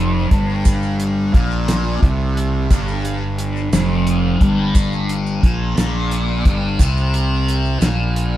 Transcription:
0.00 0.27 F1 medium
0.00 0.30 F2 medium
0.31 1.30 G1 medium
0.31 1.33 G2 medium
0.31 kick medium
0.31 closed hi-hat medium
0.65 kick medium
0.65 closed hi-hat medium
0.65 maracas medium
0.82 maracas soft
1.00 closed hi-hat medium
1.33 1.98 A#1 medium
1.33 2.01 A#2 medium
1.33 kick loud
1.33 closed hi-hat medium
1.33 maracas soft
1.51 maracas soft
1.68 snare loud
1.68 closed hi-hat loud
1.68 maracas medium
2.02 2.66 C2 medium
2.02 2.69 C3 loud
2.02 kick medium
2.02 closed hi-hat medium
2.37 closed hi-hat medium
2.70 3.69 G1 medium
2.70 3.72 G2 loud
2.70 kick loud
2.70 closed hi-hat medium
2.70 maracas medium
2.88 maracas soft
3.05 closed hi-hat medium
3.39 closed hi-hat medium
3.39 maracas soft
3.56 maracas soft
3.73 4.37 F1 medium
3.73 4.40 F2 medium
3.73 snare loud
3.73 closed hi-hat medium
3.73 maracas medium
4.07 closed hi-hat medium
4.41 5.39 G1 medium
4.41 5.43 G2 medium
4.41 kick loud
4.41 closed hi-hat medium
4.75 kick medium
4.75 closed hi-hat medium
4.75 maracas medium
4.92 maracas soft
5.09 closed hi-hat medium
5.26 maracas soft
5.43 5.75 A#1 loud
5.43 5.77 A#2 medium
5.43 kick loud
5.43 closed hi-hat medium
5.43 maracas soft
5.77 6.42 A#1 medium
5.77 6.45 A#2 medium
5.77 snare loud
5.77 closed hi-hat loud
5.77 maracas medium
6.11 closed hi-hat medium
6.11 maracas soft
6.45 6.77 G1 medium
6.45 6.79 G2 medium
6.45 kick loud
6.45 closed hi-hat medium
6.45 maracas soft
6.79 7.78 C2 medium
6.79 7.81 C3 medium
6.79 kick medium
6.79 closed hi-hat medium
6.79 maracas loud
6.97 maracas soft
7.14 closed hi-hat medium
7.48 closed hi-hat medium
7.65 maracas soft
7.81 8.37 A#1 medium
7.81 8.37 A#2 medium
7.81 snare loud
7.81 closed hi-hat loud
7.81 maracas medium
8.16 closed hi-hat medium

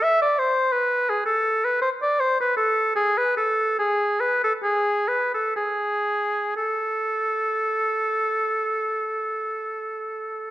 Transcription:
0.03 0.21 E5 loud
0.22 0.40 D5 medium
0.39 0.74 C5 medium
0.72 1.11 B4 medium
1.10 1.25 G#4 medium
1.26 1.66 A4 medium
1.65 1.81 B4 medium
1.82 1.90 C5 medium
2.02 2.22 D5 medium
2.20 2.38 C5 medium
2.41 2.56 B4 medium
2.57 2.95 A4 medium
2.96 3.19 G#4 medium
3.18 3.37 B4 medium
3.37 3.77 A4 medium
3.79 4.22 G#4 medium
4.20 4.41 B4 medium
4.44 4.53 A4 medium
4.63 5.10 G#4 medium
5.08 5.31 B4 medium
5.34 5.56 A4 medium
5.56 6.55 G#4 medium
6.57 10.51 A4 medium

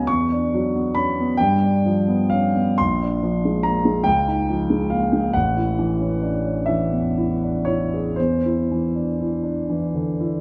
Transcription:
0.00 0.10 F#3 soft
0.00 0.10 B3 soft
0.00 0.10 C#4 soft
0.07 1.35 E2 soft
0.07 0.95 C#6 medium
0.32 0.66 D4 soft
0.54 0.87 F#3 soft
0.76 1.09 B3 soft
0.95 1.17 C#4 soft
0.95 1.38 B5 medium
1.20 1.40 B3 soft
1.37 2.74 G2 soft
1.37 2.29 G5 medium
1.63 1.98 D4 soft
1.86 2.21 F3 soft
2.08 2.45 B3 soft
2.30 2.54 C#4 soft
2.30 2.76 F5 medium
2.56 2.77 B3 soft
2.78 4.05 A#1 soft
2.78 3.65 C6 medium
3.02 3.35 D4 soft
3.23 3.56 F3 soft
3.45 3.78 G#3 soft
3.63 3.86 A#3 soft
3.63 4.06 A#5 medium
3.85 4.06 G#3 soft
4.04 5.31 C#2 soft
4.04 4.90 G5 medium
4.28 4.62 D#4 soft
4.50 4.83 F3 soft
4.70 5.04 G#3 soft
4.90 5.13 A#3 soft
4.90 5.34 F5 medium
5.13 5.35 G#3 soft
5.33 8.14 A1 soft
5.33 6.68 F#5 medium
5.56 5.92 E4 soft
5.79 6.14 E3 soft
6.00 6.36 C#4 soft
6.22 6.45 D4 soft
6.45 6.82 C#4 soft
6.66 7.06 E3 soft
6.66 7.64 E5 medium
6.91 7.30 E2 soft
7.18 7.56 E4 soft
7.43 7.67 D4 soft
7.65 8.07 E4 soft
7.65 8.17 C#5 medium
7.94 8.18 G#4 soft
8.16 10.41 E2 soft
8.16 10.41 C5 medium
8.45 8.84 E4 soft
8.71 9.09 E3 soft
8.95 9.33 D4 soft
9.20 9.43 E4 soft
9.43 9.83 D4 soft
9.70 10.10 E3 soft
9.94 10.36 D3 soft
10.20 10.41 E4 soft

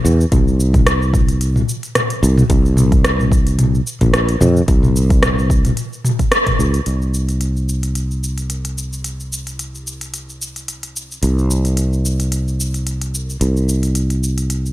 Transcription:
0.05 0.24 E2 medium
0.05 shaker medium
0.21 shaker soft
0.32 1.62 C2 loud
0.32 kick loud
0.32 closed hi-hat medium
0.32 mid tom medium
0.32 shaker soft
0.48 shaker soft
0.60 shaker medium
0.74 kick loud
0.74 closed hi-hat soft
0.74 mid tom medium
0.74 shaker soft
0.87 cross-stick loud
0.87 closed hi-hat medium
0.87 shaker soft
1.02 shaker soft
1.14 kick loud
1.14 mid tom medium
1.14 shaker medium
1.29 closed hi-hat soft
1.29 shaker soft
1.41 closed hi-hat medium
1.41 shaker soft
1.56 mid tom medium
1.56 shaker soft
1.69 shaker medium
1.83 closed hi-hat soft
1.83 shaker soft
1.95 cross-stick medium
1.95 closed hi-hat medium
1.95 mid tom medium
1.95 shaker soft
2.10 closed hi-hat soft
2.10 shaker soft
2.23 2.42 C2 medium
2.23 shaker medium
2.38 mid tom medium
2.38 shaker soft
2.50 3.80 C2 loud
2.50 kick loud
2.50 closed hi-hat medium
2.50 shaker soft
2.66 shaker soft
2.77 mid tom medium
2.77 shaker medium
2.92 kick loud
2.92 closed hi-hat soft
2.92 shaker soft
3.05 cross-stick loud
3.05 closed hi-hat medium
3.05 shaker soft
3.19 mid tom medium
3.19 shaker soft
3.32 kick loud
3.32 shaker medium
3.47 closed hi-hat soft
3.47 shaker soft
3.59 closed hi-hat medium
3.59 mid tom medium
3.59 shaker soft
3.75 shaker soft
3.87 shaker medium
4.01 4.35 A#1 medium
4.01 kick medium
4.01 closed hi-hat soft
4.01 mid tom medium
4.01 shaker soft
4.14 cross-stick loud
4.14 closed hi-hat medium
4.14 shaker soft
4.29 closed hi-hat medium
4.29 shaker soft
4.41 4.60 F2 loud
4.41 mid tom medium
4.41 shaker medium
4.57 shaker soft
4.68 5.71 C2 loud
4.68 kick loud
4.68 closed hi-hat medium
4.68 shaker soft
4.83 mid tom medium
4.83 shaker soft
4.96 shaker medium
5.10 kick loud
5.10 closed hi-hat soft
5.10 shaker soft
5.23 cross-stick loud
5.23 closed hi-hat medium
5.23 mid tom medium
5.23 shaker soft
5.39 shaker soft
5.50 kick loud
5.50 shaker medium
5.65 closed hi-hat soft
5.65 mid tom medium
5.65 shaker soft
5.77 closed hi-hat medium
5.77 shaker soft
5.93 shaker soft
6.05 mid tom medium
6.05 shaker medium
6.19 kick medium
6.19 closed hi-hat soft
6.19 shaker soft
6.32 cross-stick loud
6.32 closed hi-hat medium
6.32 shaker soft
6.47 kick medium
6.47 closed hi-hat soft
6.47 mid tom medium
6.47 shaker soft
6.59 6.79 C#2 medium
6.59 shaker medium
6.74 closed hi-hat soft
6.74 shaker soft
6.86 11.20 C2 medium
6.86 closed hi-hat medium
6.86 shaker soft
7.02 shaker soft
7.14 shaker medium
7.29 closed hi-hat soft
7.29 shaker soft
7.41 closed hi-hat medium
7.41 shaker soft
7.57 shaker soft
7.69 shaker medium
7.83 closed hi-hat soft
7.83 shaker soft
7.95 closed hi-hat medium
7.95 shaker soft
8.11 shaker soft
8.24 shaker medium
8.38 closed hi-hat soft
8.38 shaker soft
8.50 closed hi-hat medium
8.50 shaker soft
8.65 closed hi-hat soft
8.65 shaker soft
8.78 shaker medium
8.93 shaker soft
9.04 closed hi-hat medium
9.04 shaker soft
9.20 shaker soft
9.33 shaker medium
9.47 closed hi-hat soft
9.47 shaker soft
9.59 closed hi-hat medium
9.59 shaker soft
9.75 shaker soft
9.87 shaker medium
10.01 closed hi-hat soft
10.01 shaker soft
10.14 closed hi-hat medium
10.14 shaker soft
10.30 shaker soft
10.42 shaker medium
10.56 closed hi-hat soft
10.56 shaker soft
10.68 closed hi-hat medium
10.68 shaker soft
10.83 closed hi-hat soft
10.83 shaker soft
10.96 shaker medium
11.12 shaker soft
11.23 13.38 C2 medium
11.23 closed hi-hat medium
11.23 shaker soft
11.39 shaker soft
11.51 shaker medium
11.65 closed hi-hat soft
11.65 shaker soft
11.77 closed hi-hat medium
11.77 shaker soft
11.93 shaker soft
12.05 shaker medium
12.20 closed hi-hat soft
12.20 shaker soft
12.32 closed hi-hat medium
12.32 shaker soft
12.48 shaker soft
12.60 shaker medium
12.74 closed hi-hat soft
12.74 shaker soft
12.87 closed hi-hat medium
12.87 shaker soft
13.01 closed hi-hat soft
13.01 shaker soft
13.15 shaker medium
13.30 shaker soft
13.41 14.73 C2 medium
13.41 closed hi-hat medium
13.41 shaker soft
13.57 shaker soft
13.69 shaker medium
13.83 closed hi-hat soft
13.83 shaker soft
13.95 closed hi-hat medium
13.95 shaker soft
14.10 closed hi-hat soft
14.10 shaker soft
14.24 shaker medium
14.38 closed hi-hat soft
14.38 shaker soft
14.50 closed hi-hat medium
14.50 shaker soft
14.66 shaker soft

